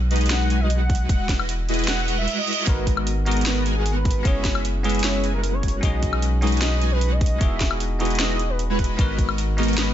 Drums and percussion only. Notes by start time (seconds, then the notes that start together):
0.11 closed hi-hat
0.16 closed hi-hat
0.21 closed hi-hat
0.26 closed hi-hat
0.30 snare, closed hi-hat
0.50 closed hi-hat
0.70 closed hi-hat
0.90 kick, closed hi-hat
0.95 closed hi-hat
1.09 kick, closed hi-hat
1.29 kick, snare, closed hi-hat
1.40 high woodblock
1.49 closed hi-hat
1.69 closed hi-hat
1.74 closed hi-hat
1.79 closed hi-hat
1.84 closed hi-hat
1.88 snare, closed hi-hat
2.08 closed hi-hat
2.28 closed hi-hat
2.47 closed hi-hat
2.53 closed hi-hat
2.67 kick, closed hi-hat
2.87 kick, closed hi-hat
2.97 high woodblock
3.07 closed hi-hat
3.26 closed hi-hat
3.31 closed hi-hat
3.37 closed hi-hat
3.41 closed hi-hat
3.46 snare, closed hi-hat
3.66 closed hi-hat
3.86 closed hi-hat
4.05 kick, closed hi-hat
4.11 closed hi-hat
4.25 kick, closed hi-hat
4.45 kick, snare, closed hi-hat
4.55 high woodblock
4.65 closed hi-hat
4.84 closed hi-hat
4.89 closed hi-hat
4.95 closed hi-hat
4.99 closed hi-hat
5.04 snare, closed hi-hat
5.24 closed hi-hat
5.44 closed hi-hat
5.63 kick, closed hi-hat
5.68 closed hi-hat
5.83 kick, closed hi-hat
6.03 kick, closed hi-hat
6.13 high woodblock
6.22 closed hi-hat
6.42 closed hi-hat
6.47 closed hi-hat
6.52 closed hi-hat
6.57 closed hi-hat
6.62 snare, closed hi-hat
6.82 closed hi-hat
7.01 closed hi-hat
7.21 kick, closed hi-hat
7.26 closed hi-hat
7.41 kick, closed hi-hat
7.60 kick, snare, closed hi-hat
7.71 high woodblock
7.80 closed hi-hat
8.00 closed hi-hat
8.05 closed hi-hat
8.10 closed hi-hat
8.15 closed hi-hat
8.20 snare
8.39 closed hi-hat
8.59 closed hi-hat
8.79 kick, closed hi-hat
8.84 closed hi-hat
8.99 kick, closed hi-hat
9.19 kick, closed hi-hat
9.29 high woodblock
9.38 closed hi-hat
9.58 closed hi-hat
9.63 closed hi-hat
9.68 closed hi-hat
9.73 closed hi-hat
9.78 snare, closed hi-hat